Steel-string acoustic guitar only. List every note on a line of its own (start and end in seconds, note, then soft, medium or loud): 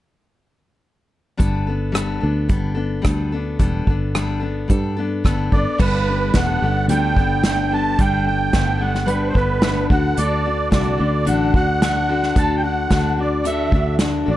1.37 1.66 G3 medium
1.37 1.67 B3 medium
1.37 1.66 D4 medium
1.37 1.66 A4 medium
1.67 1.93 B3 soft
1.67 1.93 D4 soft
1.67 1.94 A4 soft
1.92 2.21 G3 medium
1.92 2.20 B3 medium
1.92 2.22 D4 medium
1.92 2.19 A4 medium
2.20 2.49 B3 soft
2.20 2.48 D4 soft
2.20 2.49 A4 soft
2.49 2.77 G3 medium
2.49 2.75 B3 medium
2.49 2.76 D4 medium
2.49 2.73 A4 medium
2.75 3.02 B3 soft
2.75 3.01 D4 soft
2.75 3.03 A4 medium
3.02 3.31 G3 medium
3.02 3.31 B3 medium
3.02 3.31 D4 medium
3.02 3.31 A4 medium
3.32 3.58 B3 soft
3.32 3.58 D4 soft
3.32 3.59 A4 medium
3.59 3.87 G3 medium
3.59 3.87 B3 medium
3.59 3.87 D4 medium
3.59 3.86 A4 medium
3.88 4.13 B3 soft
3.88 4.14 D4 soft
3.88 4.15 A4 medium
4.15 4.42 G3 medium
4.15 4.40 B3 medium
4.15 4.41 D4 medium
4.15 4.38 A4 medium
4.40 4.68 B3 soft
4.40 4.68 D4 soft
4.40 4.68 A4 soft
4.68 4.96 G3 medium
4.68 4.97 B3 medium
4.68 4.97 D4 medium
4.68 4.95 A4 medium
4.97 5.24 B3 soft
4.97 5.24 D4 soft
4.97 5.24 A4 medium
5.24 5.52 G3 medium
5.24 5.53 B3 medium
5.24 5.52 D4 medium
5.24 5.52 A4 medium
5.53 5.78 B3 soft
5.53 5.78 D4 soft
5.53 5.79 A4 medium
5.78 6.07 G3 medium
5.78 6.07 B3 medium
5.78 6.07 D4 medium
5.78 6.06 A4 medium
6.07 6.35 B3 soft
6.07 6.34 D4 soft
6.07 6.35 A4 soft
6.35 6.63 G3 medium
6.35 6.63 B3 medium
6.35 6.63 D4 medium
6.35 6.62 A4 medium
6.63 6.89 B3 soft
6.63 6.89 D4 soft
6.63 6.90 A4 medium
6.89 7.17 G3 medium
6.89 7.18 B3 medium
6.89 7.17 D4 medium
6.89 7.16 A4 medium
7.17 7.46 B3 soft
7.17 7.45 D4 soft
7.17 7.44 A4 medium
7.45 7.72 G3 medium
7.45 7.72 B3 medium
7.45 7.72 D4 soft
7.45 7.70 A4 medium
7.71 7.99 B3 soft
7.71 7.98 D4 soft
7.71 7.99 A4 soft
7.99 8.26 G3 medium
7.99 8.25 B3 medium
7.99 8.26 D4 medium
7.99 8.23 A4 medium
8.24 8.52 B3 soft
8.24 8.53 D4 soft
8.24 8.53 A4 soft
8.53 8.81 G3 medium
8.53 8.78 B3 medium
8.53 8.79 D4 medium
8.53 8.76 A4 medium
8.78 9.06 B3 soft
8.78 9.05 D4 soft
8.78 9.07 A4 soft
9.06 9.35 G3 medium
9.06 9.34 B3 medium
9.06 9.34 D4 medium
9.06 9.33 A4 medium
9.34 9.63 B3 soft
9.34 9.61 D4 soft
9.34 9.62 A4 medium
9.61 9.90 G3 soft
9.61 9.91 B3 medium
9.61 9.90 D4 medium
9.61 9.89 A4 medium
9.91 10.16 D4 soft
9.91 10.17 F#4 soft
9.91 10.18 A4 medium
10.17 10.45 D3 medium
10.17 10.45 D4 medium
10.17 10.45 F#4 medium
10.17 10.44 A4 medium
10.45 10.69 D4 soft
10.45 10.70 F#4 soft
10.45 10.70 A4 medium
10.69 10.98 D3 medium
10.69 10.99 D4 medium
10.69 10.98 F#4 medium
10.69 10.96 A4 medium
10.98 11.25 D4 soft
10.98 11.25 F#4 soft
10.98 11.26 A4 medium
11.25 11.53 D3 medium
11.25 11.54 D4 medium
11.25 11.54 F#4 medium
11.25 11.53 A4 medium
11.54 11.82 D4 soft
11.54 11.82 F#4 medium
11.54 11.82 A4 medium
11.82 12.09 D3 soft
11.82 12.10 D4 medium
11.82 12.08 F#4 medium
11.82 12.08 A4 medium
12.09 12.37 D4 soft
12.09 12.36 F#4 soft
12.09 12.36 A4 medium
12.37 12.64 D3 medium
12.37 12.64 D4 medium
12.37 12.63 F#4 medium
12.37 12.62 A4 medium
12.63 12.90 D4 soft
12.63 12.90 F#4 soft
12.63 12.90 A4 soft
12.90 13.17 D3 medium
12.90 13.18 D4 medium
12.90 13.18 F#4 medium
12.90 13.16 A4 medium
13.17 13.44 D4 soft
13.17 13.44 F#4 soft
13.17 13.45 A4 soft
13.44 13.71 D3 medium
13.44 13.72 D4 medium
13.44 13.72 F#4 medium
13.44 13.72 A4 medium
13.73 13.99 D4 soft
13.73 14.00 F#4 soft
13.73 14.00 A4 medium
14.00 14.27 D3 medium
14.00 14.27 D4 medium
14.00 14.26 F#4 medium
14.00 14.25 A4 medium
14.26 14.37 D4 soft
14.26 14.37 F#4 medium
14.26 14.37 A4 soft